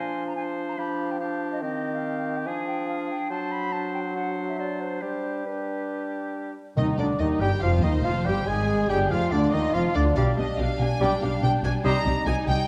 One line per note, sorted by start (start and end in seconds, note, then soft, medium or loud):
0.00 0.76 F3 medium
0.00 0.35 D4 medium
0.00 0.24 C5 medium
0.00 0.24 G#5 medium
0.27 0.35 A#5 medium
0.36 0.77 D4 medium
0.36 0.80 C5 medium
0.36 0.43 G#5 medium
0.68 0.73 A#5 medium
0.78 1.63 F3 medium
0.78 1.19 D4 medium
0.78 1.20 G4 medium
0.78 1.12 B5 medium
1.11 1.19 G5 medium
1.19 1.64 D4 medium
1.19 1.61 G4 medium
1.19 1.51 F5 medium
1.52 1.61 D#5 medium
1.62 2.48 D#3 medium
1.62 2.48 C4 medium
1.62 2.48 G4 medium
1.62 1.93 D#5 medium
1.94 2.38 F5 medium
2.37 2.48 G5 medium
2.46 3.13 F3 medium
2.46 3.30 D4 medium
2.46 3.29 G#4 medium
2.46 2.67 G#5 medium
2.67 2.87 G5 medium
2.88 3.09 F5 medium
3.09 3.32 G5 medium
3.30 4.98 F#3 medium
3.30 3.70 D4 soft
3.30 3.69 C5 medium
3.30 3.53 A5 medium
3.52 3.74 B5 medium
3.72 4.14 D4 soft
3.72 4.15 C5 soft
3.72 3.93 A5 medium
3.94 4.00 G5 medium
4.15 4.57 D4 soft
4.15 4.58 C5 medium
4.15 4.51 F#5 medium
4.49 4.61 E5 medium
4.58 5.01 D4 soft
4.58 5.03 C5 soft
4.58 4.82 D5 medium
4.80 5.01 C5 medium
5.02 6.52 G3 soft
5.02 5.45 D4 soft
5.02 5.45 G4 soft
5.02 5.48 C5 medium
5.46 6.53 D4 soft
5.46 6.53 G4 soft
5.46 6.34 B4 soft
6.77 6.97 D#2 medium
6.77 7.37 C3 medium
6.77 7.00 D#3 medium
6.77 6.87 D#3 medium
6.77 6.97 D#4 medium
6.77 6.87 D#5 medium
6.77 6.85 D#5 medium
6.77 6.83 D#5 medium
6.77 6.87 D#5 medium
6.98 7.06 D2 medium
6.98 7.07 D3 medium
6.98 7.20 D3 medium
6.98 7.08 D4 medium
6.98 7.20 D4 medium
6.98 7.06 D5 medium
6.98 7.19 D5 medium
6.98 7.21 D5 medium
6.98 7.04 D5 medium
7.19 7.40 D#2 medium
7.19 7.29 D#3 medium
7.19 7.40 D#3 medium
7.19 7.41 D#4 medium
7.19 7.27 D#5 medium
7.19 7.42 D#5 medium
7.19 7.29 D#5 medium
7.19 7.26 D#5 medium
7.40 7.48 G1 medium
7.40 7.48 G2 medium
7.40 7.62 G3 medium
7.40 7.51 G3 medium
7.40 7.51 G4 medium
7.40 7.62 G4 medium
7.40 7.61 G5 medium
7.40 7.62 G5 medium
7.61 7.83 F1 medium
7.61 7.83 F2 medium
7.61 7.83 F3 medium
7.61 7.84 F4 medium
7.61 7.86 F4 medium
7.61 8.43 C5 medium
7.61 7.83 F5 medium
7.61 7.72 F5 medium
7.61 7.68 F5 medium
7.82 8.05 D#2 medium
7.82 7.93 D#3 medium
7.82 7.92 D#4 medium
7.82 8.07 D#4 medium
7.82 8.04 D#5 medium
7.82 7.93 D#5 medium
7.82 8.06 D#5 medium
7.82 8.04 D#5 medium
8.03 8.26 F1 medium
8.03 8.26 F2 medium
8.03 8.14 F3 medium
8.03 8.27 F3 medium
8.03 8.28 F4 medium
8.03 8.26 F4 medium
8.03 8.25 F5 medium
8.03 8.27 F5 medium
8.03 8.26 F5 medium
8.25 8.47 G1 medium
8.25 8.47 G2 medium
8.25 8.48 G3 medium
8.25 8.47 G3 medium
8.25 8.48 G4 medium
8.25 8.47 G4 medium
8.25 8.46 G5 medium
8.25 8.49 G5 medium
8.25 8.47 G5 medium
8.47 8.89 G#1 medium
8.47 8.89 G#2 medium
8.47 8.89 G#3 medium
8.47 8.90 G#3 medium
8.47 8.89 G#4 medium
8.47 9.32 G#4 medium
8.47 8.89 G#4 medium
8.47 8.91 G#5 medium
8.47 8.89 G#5 medium
8.47 8.91 G#5 medium
8.89 9.10 G1 medium
8.89 9.10 G2 medium
8.89 9.10 G3 medium
8.89 9.11 G3 medium
8.89 9.11 G4 medium
8.89 8.99 G4 medium
8.89 9.09 G5 medium
8.89 9.11 G5 medium
8.89 9.12 G5 medium
8.89 8.98 G5 medium
9.10 9.18 F1 medium
9.10 9.18 F2 medium
9.10 9.32 F3 medium
9.10 9.33 F3 medium
9.10 9.31 F4 medium
9.10 9.32 F4 medium
9.10 9.32 F5 medium
9.10 9.31 F5 medium
9.10 9.33 F5 medium
9.31 9.53 D2 medium
9.31 9.40 D3 medium
9.31 9.54 D3 medium
9.31 9.53 D4 medium
9.31 9.52 D4 medium
9.31 10.17 F4 medium
9.31 9.52 D5 medium
9.31 9.37 D5 medium
9.31 9.52 D5 medium
9.31 9.55 D5 medium
9.52 9.74 D#2 medium
9.52 9.62 D#3 medium
9.52 9.76 D#3 medium
9.52 9.75 D#4 medium
9.52 9.74 D#4 medium
9.52 9.73 D#5 medium
9.52 9.74 D#5 medium
9.52 9.75 D#5 medium
9.73 9.82 F1 medium
9.73 9.82 F2 medium
9.73 9.95 F3 medium
9.73 9.97 F3 medium
9.73 9.95 F4 medium
9.73 9.97 F4 medium
9.73 9.94 F5 medium
9.73 9.81 F5 medium
9.73 9.83 F5 medium
9.73 9.95 F5 medium
9.94 10.16 D2 medium
9.94 10.16 D3 medium
9.94 10.03 D4 medium
9.94 10.17 D4 medium
9.94 10.02 D5 medium
9.94 10.01 D5 medium
9.94 10.16 D5 medium
9.94 10.05 D5 medium
10.15 10.24 B1 medium
10.15 10.25 B2 medium
10.15 12.68 G3 medium
10.15 10.32 G3 medium
10.15 11.80 D4 medium
10.15 10.24 D4 medium
10.15 12.22 D4 medium
10.15 10.24 G4 medium
10.15 10.32 G4 medium
10.15 10.31 D5 medium
10.15 10.23 F5 medium
10.15 10.38 F5 medium
10.15 10.36 D6 medium
10.38 10.46 B1 medium
10.38 10.46 B2 medium
10.38 10.46 D4 medium
10.38 10.46 G4 medium
10.38 10.59 D#5 medium
10.38 10.58 D#5 medium
10.58 10.67 B1 medium
10.58 10.66 B2 medium
10.58 10.66 D4 medium
10.58 10.66 G4 medium
10.58 10.79 F5 medium
10.58 10.80 F5 medium
10.79 10.87 B1 medium
10.79 10.87 B2 medium
10.79 10.88 D4 medium
10.79 10.88 G4 medium
10.79 11.01 G#5 loud
10.79 11.01 G#5 medium
11.00 11.09 B1 medium
11.00 11.08 B2 medium
11.00 11.15 G3 medium
11.00 11.09 D4 medium
11.00 11.15 G4 medium
11.00 11.09 G4 medium
11.00 11.15 D5 medium
11.00 11.22 G5 medium
11.00 11.11 G5 medium
11.00 11.20 D6 medium
11.21 11.30 B1 medium
11.21 11.29 B2 medium
11.21 11.30 D4 medium
11.21 11.30 G4 medium
11.21 11.43 F5 medium
11.21 11.31 F5 medium
11.42 11.50 B1 medium
11.42 11.50 B2 medium
11.42 11.51 D4 medium
11.42 11.51 G4 medium
11.42 11.51 G5 medium
11.42 11.63 G5 medium
11.63 11.71 B1 medium
11.63 11.71 B2 medium
11.63 11.71 D4 medium
11.63 11.71 G4 medium
11.63 11.72 G#5 loud
11.63 11.73 G#5 medium
11.83 11.92 C2 medium
11.83 11.92 C3 medium
11.83 11.99 G3 medium
11.83 12.68 D#4 medium
11.83 11.92 D#4 medium
11.83 11.92 G4 medium
11.83 11.99 G4 medium
11.83 11.99 C5 medium
11.83 12.25 A#5 loud
11.83 12.26 A#5 medium
11.83 12.04 D#6 medium
12.05 12.13 C2 medium
12.05 12.13 C3 medium
12.05 12.13 D#4 medium
12.05 12.13 G4 medium
12.26 12.34 C2 medium
12.26 12.34 C3 medium
12.26 12.34 D#4 medium
12.26 12.68 D#4 medium
12.26 12.34 G4 medium
12.26 12.34 G#5 loud
12.26 12.47 G#5 medium
12.47 12.55 C2 medium
12.47 12.55 C3 medium
12.47 12.56 D#4 medium
12.47 12.55 G4 medium
12.47 12.57 G5 medium
12.47 12.68 G5 loud